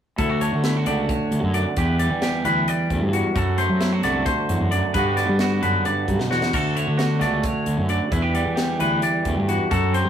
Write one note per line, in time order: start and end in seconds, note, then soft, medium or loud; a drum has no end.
0.18 1.52 D2 medium
0.18 0.49 D2 medium
0.18 0.30 E4 medium
0.18 0.41 A4 medium
0.18 kick loud
0.18 closed hi-hat medium
0.30 0.64 F#4 medium
0.41 0.87 A3 medium
0.41 0.86 C#5 medium
0.41 closed hi-hat medium
0.52 0.83 D3 medium
0.64 0.77 E4 medium
0.64 snare medium
0.64 closed hi-hat medium
0.77 1.77 F#4 soft
0.86 1.07 C#2 medium
0.86 2.45 D3 medium
0.86 1.75 A3 medium
0.86 1.09 D5 medium
0.86 closed hi-hat medium
1.09 1.54 C#5 medium
1.09 kick medium
1.09 closed hi-hat medium
1.31 1.42 D2 medium
1.31 closed hi-hat medium
1.43 1.63 F#2 medium
1.53 1.76 D2 medium
1.53 1.77 D5 medium
1.53 closed hi-hat medium
1.77 2.90 E2 medium
1.77 2.07 E2 medium
1.77 2.21 G4 medium
1.77 1.99 B4 medium
1.77 kick medium
1.77 closed hi-hat medium
1.99 2.44 G3 soft
1.99 2.45 D5 medium
1.99 closed hi-hat medium
2.10 2.41 E3 medium
2.22 3.33 G4 medium
2.22 snare medium
2.22 closed hi-hat medium
2.44 2.65 D2 medium
2.44 3.33 E3 medium
2.44 3.36 G3 medium
2.44 2.68 B4 medium
2.44 closed hi-hat medium
2.68 3.13 D5 medium
2.68 closed hi-hat medium
2.90 3.12 D2 medium
2.90 3.00 E2 medium
2.90 kick medium
2.90 closed hi-hat medium
3.01 3.21 G2 medium
3.13 3.34 E2 medium
3.13 3.36 F#4 medium
3.13 closed hi-hat medium
3.34 4.26 F#2 medium
3.34 3.66 F#2 medium
3.34 3.80 F#4 medium
3.34 3.58 A4 medium
3.34 kick loud
3.34 closed hi-hat medium
3.58 4.03 A3 medium
3.58 4.03 C5 medium
3.58 closed hi-hat medium
3.69 4.00 F#3 medium
3.81 3.93 E4 medium
3.81 snare loud
3.81 closed hi-hat medium
3.93 4.94 F#4 soft
4.03 4.23 C2 medium
4.03 4.94 D3 medium
4.03 4.92 A3 medium
4.03 4.25 D5 medium
4.03 snare soft
4.03 closed hi-hat medium
4.26 4.49 D2 medium
4.26 4.71 C5 medium
4.26 kick medium
4.26 closed hi-hat medium
4.49 4.72 E2 medium
4.49 4.59 F#2 medium
4.49 closed hi-hat medium
4.60 4.80 F#2 medium
4.71 4.95 F#2 medium
4.71 4.94 D5 medium
4.71 closed hi-hat medium
4.94 5.25 G2 medium
4.94 5.84 G2 medium
4.94 5.61 D3 medium
4.94 5.18 B3 medium
4.94 5.16 B4 medium
4.94 kick loud
4.94 closed hi-hat medium
4.98 8.15 D4 medium
4.98 5.40 F#4 medium
5.17 5.62 B3 medium
5.17 5.62 D5 medium
5.17 snare soft
5.17 closed hi-hat medium
5.29 5.59 G3 medium
5.39 6.51 F#4 medium
5.39 snare loud
5.39 closed hi-hat medium
5.62 5.82 F#2 medium
5.62 7.18 D3 medium
5.62 6.51 B3 medium
5.62 5.85 B4 medium
5.62 closed hi-hat medium
5.85 6.07 G2 medium
5.85 6.30 D5 medium
5.85 closed hi-hat medium
6.08 6.30 F#2 medium
6.08 6.18 G2 medium
6.08 kick medium
6.08 closed hi-hat medium
6.19 6.39 B2 medium
6.19 snare medium
6.30 6.53 E2 medium
6.30 6.54 F#4 medium
6.30 snare medium
6.42 snare medium
6.53 7.87 D2 medium
6.53 6.84 D2 medium
6.53 6.96 F#4 medium
6.53 6.77 A4 medium
6.53 kick loud
6.53 closed hi-hat medium
6.53 splash medium
6.75 7.19 A3 medium
6.75 7.21 C#5 medium
6.75 closed hi-hat medium
6.87 7.17 D3 medium
6.98 8.09 F#4 medium
6.98 snare medium
6.98 closed hi-hat medium
7.19 7.41 C#2 medium
7.19 8.79 D3 medium
7.19 8.08 A3 medium
7.19 7.44 D5 medium
7.19 snare soft
7.19 closed hi-hat medium
7.43 7.89 C#5 medium
7.43 kick loud
7.43 snare soft
7.43 closed hi-hat medium
7.66 7.76 D2 medium
7.66 closed hi-hat medium
7.78 7.98 F#2 medium
7.88 8.11 D2 medium
7.88 8.12 D5 medium
7.88 closed hi-hat medium
8.11 9.24 E2 medium
8.11 8.42 E2 medium
8.11 8.22 E4 medium
8.11 8.34 B4 medium
8.11 kick loud
8.11 closed hi-hat medium
8.22 8.54 G4 medium
8.34 8.79 G3 medium
8.34 8.80 D5 medium
8.34 closed hi-hat medium
8.46 8.76 E3 medium
8.56 9.67 G4 medium
8.56 snare medium
8.56 closed hi-hat medium
8.80 9.00 D2 medium
8.80 9.68 E3 medium
8.80 9.71 G3 medium
8.80 9.03 B4 medium
8.80 closed hi-hat medium
9.02 9.48 D5 medium
9.02 closed hi-hat medium
9.25 9.47 D2 medium
9.25 9.35 E2 medium
9.25 kick medium
9.25 closed hi-hat medium
9.37 9.57 G2 medium
9.48 9.70 E2 medium
9.48 9.71 F#4 medium
9.48 closed hi-hat medium
9.70 10.10 F#2 medium
9.70 10.02 F#2 medium
9.70 10.10 F#4 medium
9.70 9.94 A4 medium
9.70 kick loud
9.70 closed hi-hat medium
9.93 10.10 C4 medium
9.93 10.10 C5 medium
9.93 closed hi-hat medium
10.05 10.10 F#3 loud